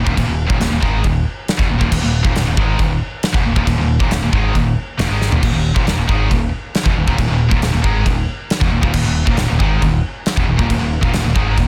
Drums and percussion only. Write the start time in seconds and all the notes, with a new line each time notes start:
0.07 kick
0.17 kick, china
0.50 kick
0.61 snare, china
0.83 kick
1.04 kick, china
1.48 snare, china
1.59 kick
1.81 kick
1.92 kick, crash, china
2.25 kick
2.36 snare, china
2.57 kick
2.79 kick, china
3.23 snare, china
3.34 kick
3.56 kick
3.67 kick, china
4.00 kick
4.11 snare, china
4.33 kick
4.55 kick, china
4.99 snare, china
5.22 snare
5.32 floor tom
5.43 kick, china, crash
5.76 kick
5.87 snare, china
6.09 kick
6.31 kick, china
6.75 snare, china
6.86 kick
7.08 kick
7.18 kick, china
7.51 kick
7.62 snare, china
7.84 kick
8.06 kick, china
8.50 snare, china
8.61 kick
8.83 kick
8.94 kick, crash, china
9.27 kick
9.37 snare, china
9.60 kick
9.82 kick, china
10.26 snare, china
10.37 kick
10.59 kick
10.70 kick, china
11.03 kick
11.13 snare, china
11.36 kick
11.57 kick, china